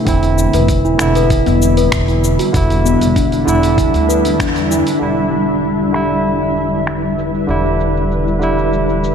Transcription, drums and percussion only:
0.07 kick, open hi-hat, shaker
0.23 open hi-hat, shaker
0.38 shaker
0.53 open hi-hat, shaker
0.68 kick, open hi-hat, shaker
0.85 shaker
0.99 finger snap, shaker
1.15 open hi-hat, shaker
1.30 kick, open hi-hat, shaker
1.46 open hi-hat, shaker
1.62 shaker
1.77 open hi-hat, shaker
1.92 finger snap, kick, open hi-hat, shaker
2.08 open hi-hat, shaker
2.24 shaker
2.39 open hi-hat, shaker
2.54 kick, open hi-hat, shaker
2.70 open hi-hat, shaker
2.86 shaker
3.01 open hi-hat, shaker
3.16 kick, open hi-hat, shaker
3.32 open hi-hat, shaker
3.48 shaker
3.63 open hi-hat, shaker
3.78 kick, open hi-hat, shaker
3.94 open hi-hat, shaker
4.10 shaker
4.25 open hi-hat, shaker
4.40 finger snap, kick, open hi-hat, shaker
4.56 open hi-hat, shaker
4.71 shaker
4.87 open hi-hat, shaker
5.19 shaker
5.33 shaker
5.50 shaker
5.64 shaker
5.80 shaker
5.94 finger snap, shaker
6.11 shaker
6.26 shaker
6.42 shaker
6.57 shaker
6.73 shaker
6.87 finger snap, shaker
7.04 shaker
7.19 shaker
7.35 shaker
7.50 shaker
7.66 shaker
7.80 shaker
7.97 shaker
8.12 shaker
8.28 shaker
8.42 shaker
8.58 shaker
8.73 shaker
8.89 shaker
9.04 shaker

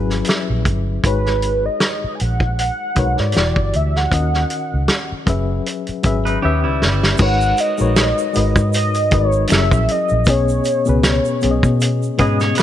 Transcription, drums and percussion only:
0.10 snare, closed hi-hat
0.25 closed hi-hat
0.29 snare
0.65 kick, closed hi-hat
1.04 kick, closed hi-hat
1.26 snare
1.42 closed hi-hat
1.80 snare, closed hi-hat
2.20 closed hi-hat
2.40 kick
2.59 closed hi-hat
2.96 kick, closed hi-hat
3.17 snare
3.32 closed hi-hat
3.37 snare
3.56 kick
3.73 closed hi-hat
3.96 snare
4.11 kick, closed hi-hat
4.34 snare
4.50 closed hi-hat
4.88 snare, closed hi-hat
5.27 kick, closed hi-hat
5.66 closed hi-hat
5.87 closed hi-hat
6.03 kick, closed hi-hat
6.26 closed hi-hat
6.82 snare
7.03 snare
7.17 kick, crash, shaker
7.41 shaker
7.57 closed hi-hat, shaker
7.78 shaker
7.96 finger snap, snare, closed hi-hat, shaker
8.18 shaker
8.34 closed hi-hat, shaker
8.56 kick, shaker
8.73 closed hi-hat, shaker
8.94 closed hi-hat, shaker
9.11 kick, closed hi-hat
9.32 shaker
9.47 finger snap, closed hi-hat, shaker
9.52 snare
9.71 kick, shaker
9.88 closed hi-hat
10.09 shaker
10.25 kick, closed hi-hat, shaker
10.48 shaker
10.64 closed hi-hat, shaker
10.85 shaker
11.03 finger snap, snare, closed hi-hat, shaker
11.25 shaker
11.41 closed hi-hat, shaker
11.63 kick, shaker
11.81 closed hi-hat, shaker
12.03 shaker
12.18 kick, closed hi-hat
12.40 snare, shaker
12.55 finger snap, closed hi-hat, shaker
12.60 snare

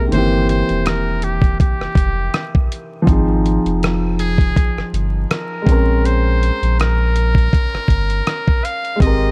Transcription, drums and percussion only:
0.12 closed hi-hat
0.49 closed hi-hat
0.69 closed hi-hat
0.86 cross-stick, closed hi-hat
1.22 closed hi-hat
1.42 kick, closed hi-hat
1.60 kick, closed hi-hat
1.81 cross-stick
1.95 kick, closed hi-hat
2.34 cross-stick, closed hi-hat
2.55 kick
2.72 closed hi-hat
3.07 kick, closed hi-hat
3.46 closed hi-hat
3.66 closed hi-hat
3.83 cross-stick, closed hi-hat
4.19 closed hi-hat
4.38 kick, closed hi-hat
4.56 kick, closed hi-hat
4.78 cross-stick
4.94 closed hi-hat
5.31 cross-stick, closed hi-hat
5.66 kick, closed hi-hat
6.05 closed hi-hat
6.43 closed hi-hat
6.63 closed hi-hat
6.80 cross-stick, closed hi-hat
7.16 closed hi-hat
7.35 kick, closed hi-hat
7.53 kick, closed hi-hat
7.75 cross-stick
7.88 kick, closed hi-hat
8.10 closed hi-hat
8.27 cross-stick, closed hi-hat
8.48 kick
8.65 closed hi-hat
8.85 closed hi-hat
9.00 kick, closed hi-hat

